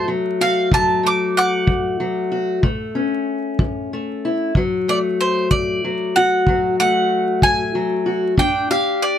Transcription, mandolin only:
0.41 F5
0.74 A5
1.07 D6
1.37 F#5 D6
4.89 D5
5.21 C5
5.51 D5
6.16 F#5
6.80 F#5
7.43 G#5
8.39 G5
8.71 F5
9.02 D5

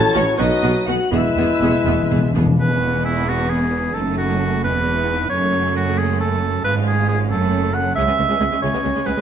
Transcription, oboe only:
Already playing: C#5
0.39 B4
1.12 B4
2.60 B4
3.05 E4
3.28 F#4
3.50 G#4
3.94 A4
4.18 F#4
4.64 B4
5.30 C#5
5.76 F#4
5.98 G#4
6.20 A4
6.64 B4
6.88 G#4
7.08 G#4
7.31 A4
7.74 F#5
7.96 E5
8.62 C#5
9.06 B4

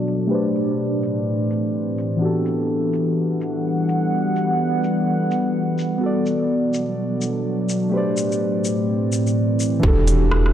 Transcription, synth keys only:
Already playing: B3 F#4 A4 D5
0.27 A3 G4 B4
0.33 C5 D5
2.17 E3 B3 D4
2.22 F#4 G4 A4
5.98 B3 F#4
6.03 A4 D5
7.89 A3 G4
7.93 B4 C5
7.97 D5
9.80 E3 D4
9.84 F#4 G4
9.88 A4

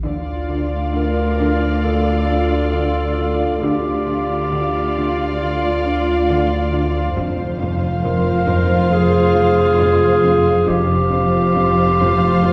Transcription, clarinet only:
0.95 A#4
1.84 A4
3.62 G4
5.41 F4
8.04 A#4
8.92 G#4
10.68 G4
12.45 F4

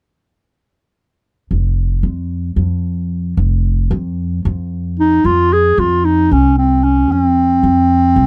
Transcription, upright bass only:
1.51 F1
2.03 F2
2.56 F2
3.37 F1
3.91 F2
4.45 F2
5.24 F2
5.78 F2
6.31 C2
7.10 F2
7.63 F2
8.16 C2

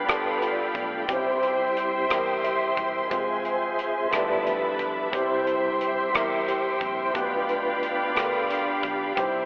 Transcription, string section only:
Already playing: D5 F5 G5 B5
1.09 C5 E5 C6
3.10 C5 G#5
4.12 E5 A5 B5
5.14 C5 G5 C6
7.15 D5 F5 B5
9.18 C5 E5 C6

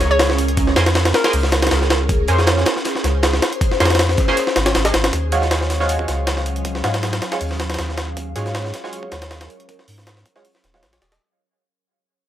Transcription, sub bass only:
0.01 C#2
0.76 F2
1.33 C#2
1.71 C#2
2.28 F2
3.04 C#2
3.80 F2
4.56 G#1
4.75 G#1
4.94 G#1
5.13 D#2
6.08 C#2
6.84 G#2
7.41 D#2
7.79 D#2
8.36 G#2
9.12 D#2
9.88 G#2
10.64 D#1
10.83 A#1
11.02 D#1

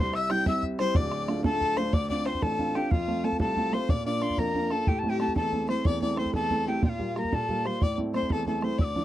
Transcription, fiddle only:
0.00 C5
0.14 E5
0.30 G5
0.46 E5
0.79 C5
0.96 D5
1.44 A4
1.77 C5
1.93 D5
2.09 D5
2.26 C5
2.42 A4
2.76 G4
2.92 F4
3.24 A4
3.40 A4
3.74 C5
3.90 D5
4.06 D5
4.39 A#4
4.71 A4
4.88 G4
5.09 G4
5.37 A4
5.69 C5
5.86 D5
6.02 D5
6.18 C5
6.34 A4
6.68 G4
6.83 F4
7.16 A#4
7.33 A4
7.65 C5
7.82 D5
8.14 C5
8.31 A4
8.46 A4
8.62 C5
8.79 D5

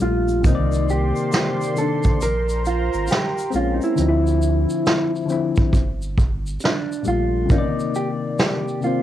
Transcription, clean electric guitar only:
0.02 F4
0.47 D#4
0.90 G4
1.34 G4
1.78 A4
2.23 A#4
2.67 F4
3.11 G4
3.56 F4
3.74 D#4
3.84 E4
6.64 D4
7.08 F4
7.52 D#4
7.96 G4
8.40 G4
8.84 F4

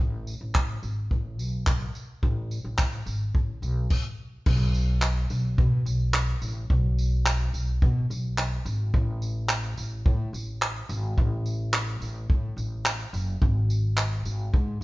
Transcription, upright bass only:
0.00 A1
0.41 A1
0.83 G#1
1.11 A1
1.39 B1
2.23 A1
2.64 A1
3.06 G#1
3.34 A1
3.62 B1
4.46 B1
5.30 B1
5.58 B2
5.86 B1
6.42 A1
6.70 B1
7.54 B1
7.82 B2
8.10 B1
8.65 G#1
8.94 A1
9.78 A1
10.06 A2
10.33 A1
10.89 G#1
11.18 A1
12.01 A1
12.30 A2
12.57 A1
13.13 F#1
13.42 G#1
14.25 G#1
14.53 G#2

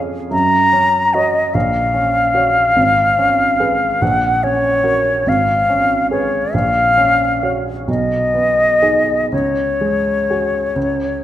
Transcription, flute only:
0.32 A#5
1.14 D#5
1.54 F5
4.02 F#5
4.43 C#5
5.29 F5
6.11 C#5
6.54 F5
7.88 D#5
9.32 C#5

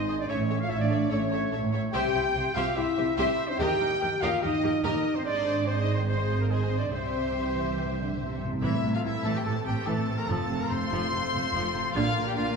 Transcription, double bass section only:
Already playing: G#1
0.30 A1
0.71 A1
1.11 A1
1.53 A1
1.94 C2
2.15 C2
2.35 C2
2.55 C2
2.76 C2
2.97 C2
3.18 C2
3.59 D#2
3.80 D#2
4.01 D#2
4.21 D#2
4.43 D#2
4.64 D#2
4.84 D#2
5.25 G#1
6.93 C2
8.62 A1
8.83 A1
9.04 A1
9.24 A1
9.46 A1
9.67 A1
9.88 A1
10.09 A1
10.29 F1
10.50 F1
10.71 F1
10.92 F1
11.13 F1
11.34 F1
11.54 F1
11.75 F1
11.96 A#1
12.17 A#1
12.38 A#1

